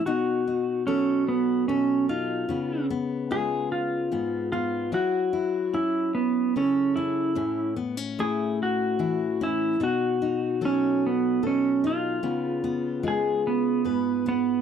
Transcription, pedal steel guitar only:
X:1
M:6/8
L:1/8
Q:3/8=49
K:C#m
V:1 name="Pedal steel guitar"
F2 C B, C ^E- | ^E z G E2 E | F2 E B, C E- | E z G F2 E |
F2 C B, C ^E- | ^E2 G B,2 B, |]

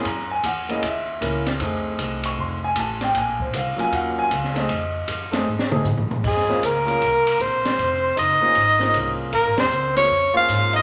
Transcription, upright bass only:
X:1
M:4/4
L:1/8
Q:"Swing" 1/4=155
K:Bbm
V:1 name="Upright bass" clef=bass
G,,2 _F,,2 E,,2 D,,2 | F,,2 C,,2 F,,,2 =A,,,2 | B,,,2 C,, z E,,2 D,,2 | F,,2 G,,2 ^G,,2 =A,,2 |
F,, z D,,2 C,,2 B,,,2 | F,,,2 G,,, z A,,,2 C,,2 | (3B,,, A,,, F,,, D,,2 F,,2 A,,2 |]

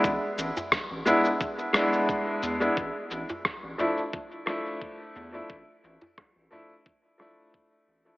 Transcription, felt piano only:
X:1
M:4/4
L:1/16
Q:"Swing 16ths" 1/4=88
K:Ddor
V:1 name="Felt piano"
z6 [^G,B,DE] z3 [G,B,DE]4- [G,B,DE] [G,B,DE] | z6 [F,A,DE] z3 [F,A,DE]4- [F,A,DE] [F,A,DE] | z6 [F,A,DE] z3 [F,A,DE]4- [F,A,DE] [F,A,DE] |]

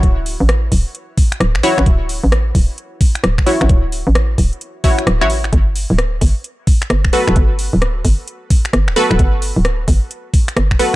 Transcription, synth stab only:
X:1
M:4/4
L:1/16
Q:"Swing 16ths" 1/4=131
K:D
V:1 name="Synth stab"
[EFc]12- [EFc]2 [EFc]2- | [EFc]12- [EFc]2 [EFc]2- | [EFc]8- [EFc]2 [EFc] z2 [EFc] z2 | z12 z2 [FAB]2- |
[FAB]12- [FAB]2 [FAB]2- | [FAB]12- [FAB]2 [FAB]2 |]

